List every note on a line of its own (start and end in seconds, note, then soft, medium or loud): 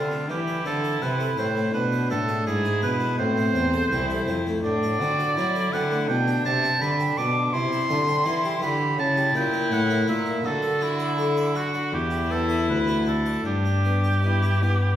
0.00 0.26 D3 soft
0.00 0.32 D3 medium
0.00 0.13 C4 soft
0.00 0.29 D4 medium
0.00 0.30 F4 medium
0.11 0.31 A3 soft
0.29 0.62 E3 medium
0.29 0.66 E3 medium
0.29 1.71 E4 medium
0.29 0.66 G4 medium
0.47 0.67 E4 soft
0.65 0.98 D3 medium
0.65 1.02 D3 medium
0.65 0.85 C4 soft
0.65 1.04 A4 medium
0.84 1.03 A4 soft
1.02 1.34 C3 medium
1.02 1.38 C3 medium
1.02 1.21 C4 soft
1.02 1.38 B4 medium
1.20 1.39 A4 soft
1.38 1.70 A2 medium
1.38 1.74 A2 medium
1.38 1.57 C4 soft
1.38 1.73 C5 medium
1.56 1.74 A3 soft
1.74 2.07 B2 medium
1.74 2.12 B2 medium
1.74 2.48 D4 medium
1.74 2.10 B4 medium
1.92 2.11 E4 soft
2.10 2.43 A2 medium
2.10 2.47 A2 medium
2.10 2.30 D4 soft
2.10 2.46 A4 medium
2.28 2.48 G#4 soft
2.47 2.79 G#2 medium
2.47 2.85 G#2 medium
2.47 2.66 D4 soft
2.47 3.20 E4 medium
2.47 2.82 G#4 medium
2.65 2.84 G#4 soft
2.82 3.15 B2 medium
2.82 3.21 B2 medium
2.82 3.02 D4 soft
2.82 3.18 B4 medium
3.00 3.19 G#3 soft
3.18 3.52 A2 medium
3.18 3.55 A2 medium
3.18 3.90 C4 medium
3.18 4.34 C5 loud
3.37 3.56 E4 soft
3.55 3.88 E2 medium
3.55 3.91 E2 medium
3.55 3.74 C4 soft
3.73 3.92 A4 soft
3.91 4.24 C2 medium
3.91 4.27 C2 medium
3.91 4.11 C4 soft
3.91 4.62 E4 medium
4.10 4.29 A4 medium
4.28 4.60 F2 medium
4.28 4.64 F2 medium
4.28 4.47 C4 soft
4.47 4.65 A3 soft
4.63 5.02 A2 medium
4.63 4.97 A2 medium
4.63 5.01 D4 medium
4.63 5.74 D5 loud
4.83 5.02 F#4 soft
5.00 5.38 D3 medium
5.00 5.34 D3 medium
5.00 5.20 C4 soft
5.00 5.36 F#4 medium
5.19 5.38 A4 medium
5.36 5.72 F#3 medium
5.36 5.69 F#3 medium
5.36 5.56 C4 medium
5.36 6.10 E4 medium
5.55 5.74 A4 medium
5.73 6.11 D3 medium
5.73 6.06 D3 medium
5.73 5.92 C4 medium
5.73 6.08 F#5 loud
5.91 6.09 A3 soft
6.08 6.45 B2 medium
6.08 6.42 B2 medium
6.08 6.80 D4 medium
6.08 6.44 G5 loud
6.27 6.46 G4 medium
6.45 6.78 C3 medium
6.45 6.81 C3 medium
6.45 6.64 D4 medium
6.45 6.83 A5 loud
6.64 6.83 G4 medium
6.81 7.17 D3 medium
6.81 7.14 D3 medium
6.81 7.55 D4 medium
6.81 7.00 D4 medium
6.81 7.19 B5 loud
7.00 7.18 G4 medium
7.17 7.50 B2 medium
7.17 7.53 B2 medium
7.17 7.37 D4 medium
7.17 7.55 D6 loud
7.53 7.92 C3 medium
7.53 7.87 C3 medium
7.53 7.91 E4 medium
7.53 8.62 C6 loud
7.72 7.91 G4 medium
7.90 8.22 D3 medium
7.90 8.28 D3 medium
7.90 8.27 D4 medium
7.90 8.09 E4 medium
8.08 8.27 G4 medium
8.25 8.59 E3 medium
8.25 8.62 E3 medium
8.25 8.64 E4 medium
8.25 8.45 E4 medium
8.44 8.63 G4 medium
8.62 8.95 D3 medium
8.62 9.00 D3 medium
8.62 8.81 E4 medium
8.62 9.00 G4 medium
8.62 8.98 B5 loud
8.98 9.34 C#3 medium
8.98 9.31 C#3 medium
8.98 10.44 E4 medium
8.98 9.35 A5 loud
9.17 9.36 G4 medium
9.35 9.68 A#2 medium
9.35 9.73 A#2 medium
9.35 9.54 E4 medium
9.35 9.74 G5 loud
9.53 9.72 A#4 medium
9.72 10.04 A2 medium
9.72 10.08 A2 medium
9.72 9.91 E4 soft
9.72 10.08 F#5 loud
9.90 10.09 A#4 medium
10.08 10.41 A#2 medium
10.08 10.44 A#2 medium
10.08 10.27 E4 soft
10.08 10.47 E5 medium
10.25 10.44 A#3 soft
10.44 11.89 D3 medium
10.44 11.95 D3 medium
10.44 11.17 F#4 medium
10.44 10.84 A4 loud
10.62 10.82 A4 medium
10.81 11.58 E4 medium
10.81 11.01 F#4 soft
11.00 11.19 D5 medium
11.18 11.38 F#4 medium
11.18 11.55 A4 medium
11.37 11.57 D5 soft
11.55 11.75 F#4 soft
11.55 11.95 F#4 medium
11.55 11.93 F#4 medium
11.74 11.93 D4 soft
11.92 12.64 E2 medium
11.92 12.70 E2 medium
11.92 13.45 E4 medium
11.92 12.33 G4 medium
12.11 12.31 G4 soft
12.30 12.50 B3 soft
12.30 12.68 A4 medium
12.49 12.68 B4 medium
12.68 13.41 D2 medium
12.68 13.45 D2 medium
12.68 13.06 B4 medium
12.88 13.08 F#4 soft
13.06 13.27 D4 soft
13.06 13.45 A4 medium
13.26 13.45 D5 soft
13.45 14.96 G2 medium
13.45 14.14 D4 medium
13.45 14.96 G4 medium
13.65 13.86 D4 soft
13.84 14.05 B3 soft
14.04 14.24 G4 soft
14.23 14.44 B3 soft
14.23 14.64 E4 medium
14.43 14.63 G4 soft
14.62 14.82 B3 soft
14.62 14.96 B3 medium